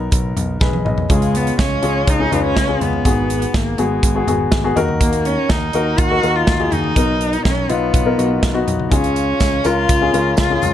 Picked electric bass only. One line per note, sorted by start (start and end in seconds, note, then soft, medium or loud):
0.12 0.32 B1 medium
0.37 0.57 B1 medium
0.61 0.81 B1 medium
0.85 1.05 B1 medium
1.10 1.50 C#2 medium
1.59 1.79 C#2 medium
1.83 2.03 C#2 medium
2.08 2.28 C#2 medium
2.32 2.52 C#2 medium
2.57 2.77 C#2 medium
2.81 3.01 C#2 medium
3.05 3.45 G#1 medium
3.54 3.74 G#1 medium
3.78 3.98 G#1 medium
4.03 4.23 G#1 medium
4.27 4.47 G#1 medium
4.52 4.72 G#1 medium
4.76 5.36 D#2 medium
5.50 5.70 D#2 medium
5.74 5.94 D#2 medium
5.98 6.19 D#2 medium
6.23 6.43 D#2 medium
6.48 6.68 D#2 medium
6.72 6.92 D#2 medium
6.96 7.36 B1 medium
7.45 7.65 B1 medium
7.70 7.90 B1 medium
7.94 8.14 B1 medium
8.19 8.39 B1 medium
8.43 8.63 B1 medium
8.68 8.88 B1 medium
8.92 9.32 C#2 medium
9.41 9.61 C#2 medium
9.65 9.85 C#2 medium
9.89 10.09 C#2 medium
10.14 10.34 C#2 medium
10.38 10.58 C#2 medium
10.63 10.74 C#2 medium